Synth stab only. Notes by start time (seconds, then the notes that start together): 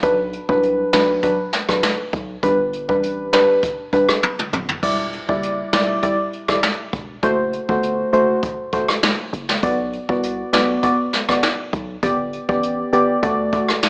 0.03 F#3 D4 B4
0.49 F#3 D4 B4
0.93 F#3 D4 B4
1.23 F#3 D4 B4
1.69 F#3 D4 B4
2.43 G3 D4 B4
2.89 G3 D4 B4
3.32 G3 D4 B4
3.93 G3 D4 B4
4.83 G3 E4 D5
5.28 G3 E4 D5
5.73 G3 E4 D5
6.03 G3 E4 D5
6.49 G3 E4 D5
7.23 A3 F#4 C5
7.69 A3 F#4 C5
8.12 A3 F#4 C5
8.73 A3 F#4 C5
9.63 B3 F#4 D5
10.09 B3 F#4 D5
10.53 B3 F#4 D5
10.83 B3 F#4 D5
11.29 B3 F#4 D5
12.03 B3 G4 D5
12.49 B3 G4 D5
12.93 B3 G4 D5
13.22 A3 F#4 D5
13.53 A3 F#4 D5